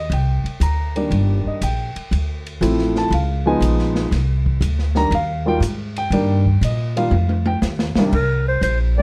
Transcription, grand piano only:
0, 0, Header, 1, 2, 480
1, 0, Start_track
1, 0, Key_signature, -3, "minor"
1, 0, Tempo, 501253
1, 104, Time_signature, 4, 2, 24, 8
1, 8639, End_track
2, 0, Start_track
2, 0, Title_t, "Grand piano"
2, 0, Program_c, 0, 0
2, 0, Note_on_c, 0, 75, 71
2, 108, Note_off_c, 0, 75, 0
2, 128, Note_on_c, 0, 79, 70
2, 600, Note_on_c, 0, 82, 79
2, 885, Note_off_c, 0, 79, 0
2, 915, Note_on_c, 0, 51, 61
2, 919, Note_on_c, 0, 55, 59
2, 923, Note_on_c, 0, 58, 60
2, 931, Note_on_c, 0, 62, 73
2, 1361, Note_off_c, 0, 82, 0
2, 1411, Note_on_c, 0, 75, 65
2, 1515, Note_off_c, 0, 51, 0
2, 1517, Note_off_c, 0, 55, 0
2, 1519, Note_off_c, 0, 58, 0
2, 1523, Note_off_c, 0, 62, 0
2, 1549, Note_off_c, 0, 75, 0
2, 1564, Note_on_c, 0, 79, 76
2, 2323, Note_off_c, 0, 79, 0
2, 2500, Note_on_c, 0, 53, 68
2, 2507, Note_on_c, 0, 57, 62
2, 2510, Note_on_c, 0, 60, 60
2, 2514, Note_on_c, 0, 64, 77
2, 2851, Note_on_c, 0, 81, 89
2, 2981, Note_off_c, 0, 53, 0
2, 2985, Note_off_c, 0, 57, 0
2, 2986, Note_off_c, 0, 60, 0
2, 2988, Note_off_c, 0, 64, 0
2, 2989, Note_off_c, 0, 81, 0
2, 3005, Note_on_c, 0, 77, 63
2, 3311, Note_on_c, 0, 53, 73
2, 3313, Note_off_c, 0, 77, 0
2, 3317, Note_on_c, 0, 56, 69
2, 3322, Note_on_c, 0, 59, 73
2, 3323, Note_on_c, 0, 80, 87
2, 3325, Note_on_c, 0, 63, 82
2, 3465, Note_off_c, 0, 80, 0
2, 3912, Note_off_c, 0, 53, 0
2, 3915, Note_off_c, 0, 56, 0
2, 3918, Note_off_c, 0, 59, 0
2, 3919, Note_off_c, 0, 63, 0
2, 4743, Note_on_c, 0, 51, 78
2, 4745, Note_on_c, 0, 55, 67
2, 4754, Note_on_c, 0, 58, 62
2, 4756, Note_on_c, 0, 62, 74
2, 4761, Note_on_c, 0, 82, 108
2, 4884, Note_off_c, 0, 51, 0
2, 4885, Note_off_c, 0, 55, 0
2, 4889, Note_off_c, 0, 58, 0
2, 4890, Note_off_c, 0, 62, 0
2, 4903, Note_off_c, 0, 82, 0
2, 4930, Note_on_c, 0, 77, 86
2, 5224, Note_on_c, 0, 51, 78
2, 5229, Note_on_c, 0, 55, 71
2, 5235, Note_off_c, 0, 77, 0
2, 5236, Note_on_c, 0, 58, 68
2, 5238, Note_on_c, 0, 65, 84
2, 5248, Note_on_c, 0, 79, 101
2, 5334, Note_off_c, 0, 79, 0
2, 5364, Note_off_c, 0, 51, 0
2, 5366, Note_off_c, 0, 55, 0
2, 5370, Note_off_c, 0, 58, 0
2, 5371, Note_off_c, 0, 65, 0
2, 5725, Note_on_c, 0, 79, 99
2, 5863, Note_on_c, 0, 51, 70
2, 5864, Note_on_c, 0, 55, 69
2, 5868, Note_on_c, 0, 58, 66
2, 5876, Note_on_c, 0, 62, 77
2, 6158, Note_off_c, 0, 51, 0
2, 6159, Note_off_c, 0, 55, 0
2, 6160, Note_off_c, 0, 58, 0
2, 6164, Note_off_c, 0, 62, 0
2, 6312, Note_off_c, 0, 79, 0
2, 6362, Note_on_c, 0, 75, 70
2, 6668, Note_on_c, 0, 51, 73
2, 6671, Note_off_c, 0, 75, 0
2, 6671, Note_on_c, 0, 55, 64
2, 6677, Note_on_c, 0, 77, 82
2, 6678, Note_on_c, 0, 58, 67
2, 6684, Note_on_c, 0, 65, 77
2, 6806, Note_off_c, 0, 51, 0
2, 6808, Note_off_c, 0, 55, 0
2, 6812, Note_off_c, 0, 58, 0
2, 6814, Note_off_c, 0, 65, 0
2, 7121, Note_off_c, 0, 77, 0
2, 7153, Note_on_c, 0, 79, 94
2, 7244, Note_off_c, 0, 79, 0
2, 7640, Note_on_c, 0, 36, 77
2, 7643, Note_on_c, 0, 51, 67
2, 7645, Note_on_c, 0, 55, 72
2, 7647, Note_on_c, 0, 58, 70
2, 7654, Note_on_c, 0, 62, 78
2, 7773, Note_off_c, 0, 36, 0
2, 7775, Note_off_c, 0, 51, 0
2, 7775, Note_off_c, 0, 55, 0
2, 7776, Note_off_c, 0, 58, 0
2, 7780, Note_off_c, 0, 62, 0
2, 8596, Note_on_c, 0, 51, 56
2, 8597, Note_on_c, 0, 55, 58
2, 8604, Note_on_c, 0, 58, 55
2, 8610, Note_on_c, 0, 62, 61
2, 8639, Note_off_c, 0, 51, 0
2, 8639, Note_off_c, 0, 55, 0
2, 8639, Note_off_c, 0, 58, 0
2, 8639, Note_off_c, 0, 62, 0
2, 8639, End_track
0, 0, End_of_file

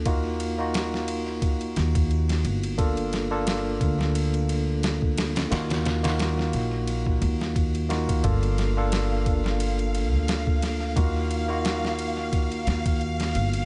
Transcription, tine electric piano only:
0, 0, Header, 1, 2, 480
1, 0, Start_track
1, 0, Tempo, 681818
1, 40, Time_signature, 4, 2, 24, 8
1, 9610, End_track
2, 0, Start_track
2, 0, Title_t, "Tine electric piano"
2, 0, Program_c, 0, 4
2, 0, Control_c, 0, 64, 127
2, 39, Note_on_c, 0, 58, 82
2, 42, Note_on_c, 0, 63, 77
2, 44, Note_on_c, 0, 65, 71
2, 49, Control_c, 0, 64, 0
2, 49, Note_on_c, 0, 66, 89
2, 183, Control_c, 0, 64, 127
2, 381, Note_off_c, 0, 58, 0
2, 382, Note_off_c, 0, 63, 0
2, 383, Note_off_c, 0, 65, 0
2, 385, Note_off_c, 0, 66, 0
2, 412, Note_on_c, 0, 58, 76
2, 416, Note_on_c, 0, 63, 73
2, 420, Note_on_c, 0, 65, 67
2, 426, Note_on_c, 0, 66, 83
2, 1934, Note_off_c, 0, 58, 0
2, 1936, Note_off_c, 0, 63, 0
2, 1938, Note_off_c, 0, 65, 0
2, 1941, Note_off_c, 0, 66, 0
2, 1956, Note_on_c, 0, 58, 81
2, 1957, Note_on_c, 0, 62, 73
2, 1960, Note_on_c, 0, 65, 74
2, 1963, Note_on_c, 0, 69, 89
2, 1970, Control_c, 0, 64, 0
2, 2081, Control_c, 0, 64, 127
2, 2299, Note_off_c, 0, 58, 0
2, 2299, Note_off_c, 0, 62, 0
2, 2301, Note_off_c, 0, 65, 0
2, 2303, Note_off_c, 0, 69, 0
2, 2330, Note_on_c, 0, 58, 83
2, 2330, Note_on_c, 0, 62, 79
2, 2333, Note_on_c, 0, 65, 76
2, 2336, Note_on_c, 0, 69, 91
2, 2397, Note_off_c, 0, 58, 0
2, 2398, Note_off_c, 0, 62, 0
2, 2399, Note_off_c, 0, 65, 0
2, 2400, Note_off_c, 0, 69, 0
2, 3877, Note_on_c, 0, 58, 87
2, 3880, Note_on_c, 0, 63, 72
2, 3883, Note_on_c, 0, 65, 76
2, 3884, Note_on_c, 0, 66, 88
2, 3890, Control_c, 0, 64, 0
2, 4031, Control_c, 0, 64, 127
2, 4220, Note_off_c, 0, 58, 0
2, 4221, Note_off_c, 0, 63, 0
2, 4222, Note_off_c, 0, 65, 0
2, 4223, Note_off_c, 0, 66, 0
2, 4246, Note_on_c, 0, 58, 81
2, 4249, Note_on_c, 0, 63, 69
2, 4254, Note_on_c, 0, 65, 72
2, 4258, Note_on_c, 0, 66, 79
2, 5535, Note_off_c, 0, 58, 0
2, 5536, Note_off_c, 0, 63, 0
2, 5539, Note_off_c, 0, 65, 0
2, 5541, Note_off_c, 0, 66, 0
2, 5553, Note_on_c, 0, 58, 81
2, 5560, Note_on_c, 0, 63, 73
2, 5560, Note_on_c, 0, 65, 72
2, 5563, Note_on_c, 0, 66, 86
2, 5771, Note_off_c, 0, 58, 0
2, 5774, Note_off_c, 0, 63, 0
2, 5774, Note_off_c, 0, 65, 0
2, 5776, Note_off_c, 0, 66, 0
2, 5796, Note_on_c, 0, 58, 81
2, 5800, Note_on_c, 0, 62, 74
2, 5801, Note_on_c, 0, 65, 75
2, 5805, Note_on_c, 0, 69, 89
2, 5809, Control_c, 0, 64, 0
2, 5926, Control_c, 0, 64, 127
2, 6139, Note_off_c, 0, 58, 0
2, 6141, Note_off_c, 0, 62, 0
2, 6142, Note_off_c, 0, 65, 0
2, 6143, Note_off_c, 0, 69, 0
2, 6173, Note_on_c, 0, 58, 77
2, 6177, Note_on_c, 0, 62, 77
2, 6177, Note_on_c, 0, 65, 75
2, 6182, Note_on_c, 0, 69, 88
2, 6239, Note_off_c, 0, 58, 0
2, 6241, Note_off_c, 0, 62, 0
2, 6241, Note_off_c, 0, 65, 0
2, 6244, Note_off_c, 0, 69, 0
2, 7714, Note_on_c, 0, 58, 84
2, 7716, Note_on_c, 0, 63, 77
2, 7720, Note_on_c, 0, 65, 77
2, 7722, Note_on_c, 0, 66, 90
2, 7730, Control_c, 0, 64, 0
2, 7872, Control_c, 0, 64, 127
2, 8058, Note_off_c, 0, 58, 0
2, 8059, Note_off_c, 0, 63, 0
2, 8061, Note_off_c, 0, 65, 0
2, 8062, Note_off_c, 0, 66, 0
2, 8083, Note_on_c, 0, 58, 82
2, 8086, Note_on_c, 0, 63, 65
2, 8092, Note_on_c, 0, 65, 72
2, 8096, Note_on_c, 0, 66, 89
2, 9609, Note_off_c, 0, 58, 0
2, 9610, Note_off_c, 0, 63, 0
2, 9610, Note_off_c, 0, 65, 0
2, 9610, Note_off_c, 0, 66, 0
2, 9610, End_track
0, 0, End_of_file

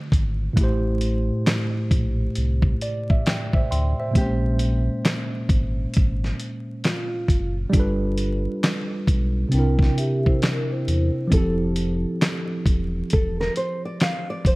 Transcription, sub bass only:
0, 0, Header, 1, 2, 480
1, 0, Start_track
1, 0, Key_signature, -1, "major"
1, 0, Tempo, 895522
1, 307, Time_signature, 4, 2, 24, 8
1, 7801, End_track
2, 0, Start_track
2, 0, Title_t, "Sub bass"
2, 0, Program_c, 0, 38
2, 67, Note_on_c, 0, 32, 93
2, 265, Note_off_c, 0, 32, 0
2, 308, Note_on_c, 0, 33, 113
2, 703, Note_off_c, 0, 33, 0
2, 1027, Note_on_c, 0, 34, 91
2, 1224, Note_off_c, 0, 34, 0
2, 1273, Note_on_c, 0, 36, 106
2, 1468, Note_off_c, 0, 36, 0
2, 1991, Note_on_c, 0, 38, 92
2, 2114, Note_off_c, 0, 38, 0
2, 2228, Note_on_c, 0, 34, 110
2, 2623, Note_off_c, 0, 34, 0
2, 2946, Note_on_c, 0, 32, 83
2, 3144, Note_off_c, 0, 32, 0
2, 3201, Note_on_c, 0, 32, 100
2, 3393, Note_off_c, 0, 32, 0
2, 3907, Note_on_c, 0, 30, 99
2, 4104, Note_off_c, 0, 30, 0
2, 4148, Note_on_c, 0, 31, 119
2, 4543, Note_off_c, 0, 31, 0
2, 4868, Note_on_c, 0, 35, 87
2, 5065, Note_off_c, 0, 35, 0
2, 5110, Note_on_c, 0, 36, 104
2, 5307, Note_off_c, 0, 36, 0
2, 5831, Note_on_c, 0, 40, 93
2, 5953, Note_off_c, 0, 40, 0
2, 6068, Note_on_c, 0, 29, 118
2, 6463, Note_off_c, 0, 29, 0
2, 6787, Note_on_c, 0, 28, 98
2, 6985, Note_off_c, 0, 28, 0
2, 7041, Note_on_c, 0, 28, 99
2, 7233, Note_off_c, 0, 28, 0
2, 7747, Note_on_c, 0, 28, 88
2, 7801, Note_off_c, 0, 28, 0
2, 7801, End_track
0, 0, End_of_file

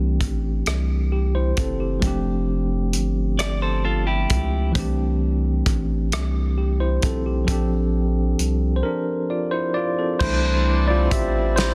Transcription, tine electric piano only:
0, 0, Header, 1, 2, 480
1, 0, Start_track
1, 0, Tempo, 909091
1, 1069, Time_signature, 6, 3, 24, 8
1, 6199, End_track
2, 0, Start_track
2, 0, Title_t, "Tine electric piano"
2, 0, Program_c, 0, 4
2, 0, Control_c, 0, 64, 127
2, 0, Note_on_c, 0, 52, 62
2, 0, Note_on_c, 0, 57, 55
2, 0, Note_on_c, 0, 60, 57
2, 0, Note_on_c, 0, 62, 58
2, 0, Note_on_c, 0, 67, 67
2, 571, Note_off_c, 0, 60, 0
2, 575, Note_off_c, 0, 62, 0
2, 585, Note_off_c, 0, 67, 0
2, 592, Note_on_c, 0, 67, 56
2, 704, Note_off_c, 0, 67, 0
2, 712, Note_on_c, 0, 72, 60
2, 714, Note_on_c, 0, 64, 50
2, 825, Note_off_c, 0, 72, 0
2, 826, Note_off_c, 0, 64, 0
2, 832, Note_on_c, 0, 69, 57
2, 834, Note_on_c, 0, 60, 54
2, 944, Note_off_c, 0, 69, 0
2, 946, Note_off_c, 0, 60, 0
2, 951, Note_on_c, 0, 67, 51
2, 1038, Note_off_c, 0, 52, 0
2, 1044, Note_off_c, 0, 57, 0
2, 1054, Note_on_c, 0, 53, 60
2, 1063, Note_on_c, 0, 56, 49
2, 1073, Note_on_c, 0, 60, 62
2, 1075, Control_c, 0, 64, 0
2, 1084, Note_on_c, 0, 62, 63
2, 1087, Note_off_c, 0, 67, 0
2, 1093, Note_on_c, 0, 67, 71
2, 1096, Note_on_c, 0, 57, 59
2, 1100, Note_off_c, 0, 56, 0
2, 1169, Control_c, 0, 64, 127
2, 2480, Note_off_c, 0, 53, 0
2, 2490, Note_off_c, 0, 60, 0
2, 2490, Note_on_c, 0, 52, 64
2, 2494, Note_off_c, 0, 57, 0
2, 2495, Note_off_c, 0, 62, 0
2, 2500, Note_off_c, 0, 67, 0
2, 2500, Note_on_c, 0, 57, 59
2, 2510, Note_on_c, 0, 60, 58
2, 2516, Control_c, 0, 64, 0
2, 2521, Note_on_c, 0, 62, 59
2, 2531, Note_on_c, 0, 67, 71
2, 2619, Control_c, 0, 64, 127
2, 3450, Note_off_c, 0, 60, 0
2, 3456, Note_off_c, 0, 62, 0
2, 3461, Note_off_c, 0, 67, 0
2, 3472, Note_on_c, 0, 67, 56
2, 3584, Note_off_c, 0, 67, 0
2, 3592, Note_on_c, 0, 72, 63
2, 3594, Note_on_c, 0, 64, 53
2, 3705, Note_off_c, 0, 72, 0
2, 3706, Note_off_c, 0, 64, 0
2, 3712, Note_on_c, 0, 69, 61
2, 3717, Note_on_c, 0, 60, 51
2, 3825, Note_off_c, 0, 69, 0
2, 3827, Note_off_c, 0, 60, 0
2, 3834, Note_on_c, 0, 67, 52
2, 3918, Note_off_c, 0, 52, 0
2, 3923, Note_off_c, 0, 57, 0
2, 3931, Note_on_c, 0, 53, 65
2, 3943, Note_on_c, 0, 69, 60
2, 3953, Note_on_c, 0, 60, 63
2, 3956, Control_c, 0, 64, 0
2, 3963, Note_on_c, 0, 62, 59
2, 3966, Note_off_c, 0, 67, 0
2, 3972, Note_on_c, 0, 67, 71
2, 4034, Control_c, 0, 64, 127
2, 4626, Note_on_c, 0, 72, 57
2, 4663, Note_on_c, 0, 70, 79
2, 4666, Note_off_c, 0, 72, 0
2, 4668, Note_off_c, 0, 62, 0
2, 4674, Note_on_c, 0, 62, 62
2, 4892, Note_off_c, 0, 60, 0
2, 4902, Note_off_c, 0, 67, 0
2, 4911, Note_on_c, 0, 74, 54
2, 4915, Note_on_c, 0, 65, 47
2, 5005, Note_off_c, 0, 70, 0
2, 5010, Note_off_c, 0, 62, 0
2, 5023, Note_on_c, 0, 72, 80
2, 5024, Note_off_c, 0, 74, 0
2, 5026, Note_off_c, 0, 65, 0
2, 5033, Note_on_c, 0, 64, 65
2, 5144, Note_off_c, 0, 64, 0
2, 5144, Note_on_c, 0, 74, 83
2, 5156, Note_on_c, 0, 65, 64
2, 5253, Note_off_c, 0, 74, 0
2, 5257, Note_off_c, 0, 72, 0
2, 5262, Note_off_c, 0, 65, 0
2, 5266, Note_off_c, 0, 69, 0
2, 5273, Note_on_c, 0, 69, 56
2, 5275, Note_on_c, 0, 60, 44
2, 5359, Note_off_c, 0, 53, 0
2, 5383, Note_on_c, 0, 72, 99
2, 5388, Note_on_c, 0, 52, 54
2, 5389, Note_on_c, 0, 57, 50
2, 5392, Note_on_c, 0, 62, 60
2, 5395, Note_on_c, 0, 64, 76
2, 5396, Control_c, 0, 64, 0
2, 5484, Control_c, 0, 64, 127
2, 5499, Note_off_c, 0, 69, 0
2, 5500, Note_off_c, 0, 60, 0
2, 5731, Note_off_c, 0, 64, 0
2, 5743, Note_on_c, 0, 74, 100
2, 5755, Note_on_c, 0, 65, 77
2, 5757, Note_off_c, 0, 72, 0
2, 5864, Note_off_c, 0, 65, 0
2, 5867, Note_on_c, 0, 76, 97
2, 5870, Note_off_c, 0, 74, 0
2, 5880, Note_on_c, 0, 67, 82
2, 6087, Note_off_c, 0, 52, 0
2, 6088, Note_off_c, 0, 57, 0
2, 6089, Note_off_c, 0, 62, 0
2, 6098, Note_off_c, 0, 67, 0
2, 6104, Note_on_c, 0, 72, 98
2, 6115, Note_off_c, 0, 76, 0
2, 6115, Note_on_c, 0, 64, 74
2, 6199, Note_off_c, 0, 64, 0
2, 6199, Note_off_c, 0, 72, 0
2, 6199, End_track
0, 0, End_of_file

